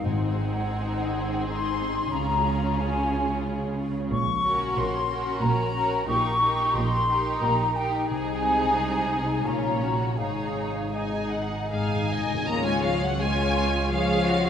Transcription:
Already playing: D#4 F#4
0.04 G#1 G#2 C4 D#4 G#4 F#5
0.40 G#3
0.74 D#4
1.10 G#4
1.46 D#4 C6
1.80 C4
2.13 C#2 C#3 C#4 F4 A#5
2.47 C#4
2.81 G#4 G#5
3.14 C#5
3.47 G#4
3.79 F4
4.11 A#1 A#2 C#6
4.43 A#3 C#4 F#4 A#4
4.76 A#1 A#2 F#4 C6
5.09 C#4 F#4 A#4
5.41 A#1 A#2 F#4 A#5
5.74 C#4 F#4 A#4
6.07 A#1 A#2 D#4 G4 A#4 C#6
6.41 A#3 D#4 G4 A#4
6.75 A#1 A#2 G4 C6
7.09 D#4 G4 A#4
7.43 A#1 A#2 G4 A#5
7.77 D#4 G4 A#4 G5
8.10 C2 C3 D#4 G#4 G#5
8.44 G#3
8.78 G#4
9.12 D#4
9.46 A#1 A#2 C#4 F4 C#5 A#5
9.82 C#4 F#4 C#5
10.19 G#1 G#2 D#4 G#4 C#5 F5
10.56 G#3
10.93 D#4 G#4 C#5 D#5 G#5
11.31 G#4 F#5
11.71 G#2 G#3 D#4 G#4 F5 G#5
11.79 G#2
11.88 G#2
11.96 G#2
12.03 G#2
12.09 G#2 D#4 C5 D#5
12.18 G#2
12.27 G#2 C#3
12.34 G#2 G#3
12.39 F4
12.43 A#3 C#5 A#5
12.47 C#2 G#3 C#4 F4 C#5
12.65 G#3 G#5
12.83 F3 F5
13.01 F#3 F#5
13.19 G#3 C#4 F4 C#5 G#5
13.91 F3 G#3 C#4 F4 G#4 C#5 F5
14.29 F#4

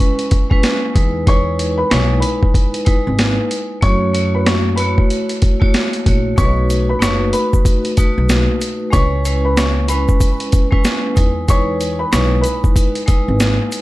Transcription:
Already playing: G#3 C#4 E4 B4 B5
0.00 closed hi-hat
0.19 closed hi-hat
0.31 kick, closed hi-hat
0.50 G#3 C#4 E4 B4, kick
0.63 snare, closed hi-hat
0.94 E2 G#3 D#4 E4 B4, kick, closed hi-hat
1.27 G#3 D#4 E4 B4 C#5 C#6, kick, closed hi-hat
1.59 closed hi-hat
1.78 B4 B5
1.90 B1 G#3 D#4 E4 B4 C#5 C#6, snare, closed hi-hat
2.20 B4 B5, closed hi-hat
2.43 kick
2.54 kick, closed hi-hat
2.74 closed hi-hat
2.85 G#3 D#4 E4 B4, kick, closed hi-hat
3.07 G#1
3.19 snare, closed hi-hat
3.51 closed hi-hat
3.81 F#2 A3 E4 F#4 C#5 C#6, kick, closed hi-hat
4.13 A3 E4 F#4 C#5, closed hi-hat
4.35 B4 B5
4.46 C#5 C#6, snare, closed hi-hat
4.76 A3 E4 B4 B5, closed hi-hat
4.80 F#4 C#5
4.98 kick
5.10 closed hi-hat
5.29 closed hi-hat
5.42 kick, closed hi-hat
5.60 A3 E4 F#4 C#5, kick
5.74 snare, closed hi-hat
5.93 closed hi-hat
6.06 A#1 A3 E4 F#4 C#5, kick, closed hi-hat
6.36 B1 A3 D#4 F#4 B4 C#5 C#6, kick, closed hi-hat, shaker
6.70 closed hi-hat, shaker
6.89 B4 B5
6.99 F#1 A3 D#4 F#4 B4 C#5 C#6, snare, closed hi-hat, shaker
7.33 B4 B5, closed hi-hat, shaker
7.53 kick, shaker
7.65 kick, closed hi-hat, shaker
7.85 closed hi-hat
7.97 A3 D#4 F#4 B4, kick, closed hi-hat, shaker
8.18 B1
8.29 snare, closed hi-hat, shaker
8.61 closed hi-hat, shaker
8.91 C#2 G#3 C#4 E4 B4 C#5 C#6, kick, closed hi-hat, shaker
9.25 G#3 C#4 E4 B4, closed hi-hat, shaker
9.45 B4 B5
9.57 C#5 C#6, snare, closed hi-hat, shaker
9.88 G#3 C#4 E4 B4 B5, closed hi-hat, shaker
10.08 kick, shaker
10.20 kick, closed hi-hat, shaker
10.40 closed hi-hat
10.52 kick, closed hi-hat, shaker
10.71 G#3 C#4 E4 B4, kick
10.84 snare, closed hi-hat, shaker
11.15 E2 G#3 D#4 E4 B4, kick, closed hi-hat, shaker
11.48 G#3 D#4 E4 B4 C#5 C#6, kick, closed hi-hat, shaker
11.80 closed hi-hat, shaker
11.99 B4 B5
12.12 B1 G#3 D#4 E4 B4 C#5 C#6, snare, closed hi-hat, shaker
12.41 B4 B5, closed hi-hat, shaker
12.64 kick, shaker
12.76 kick, closed hi-hat, shaker
12.95 closed hi-hat
13.06 G#3 D#4 E4 B4, kick, closed hi-hat, shaker
13.28 G#1
13.40 snare, closed hi-hat, shaker
13.72 closed hi-hat, shaker

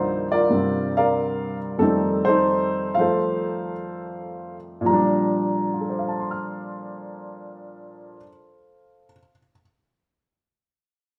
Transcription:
Already playing: C2 G2 D#3 F3 A#3 D4 D#4 F4 C5 D5
0.32 F4 A#4 D5
0.49 G2 C3 G3 C4
0.97 A#4 D5 F5
1.78 F2 D#3 G3 C4 D#4 A4
1.82 A3
2.25 D#4 A4 C5
2.95 F3 F5
2.99 A3 A4 C5
4.81 A#2 F3
4.86 G3 A#5
4.93 D4
5.74 F4
5.81 A4
5.89 C5
5.99 F5
6.08 A5
6.19 C6
6.31 F6

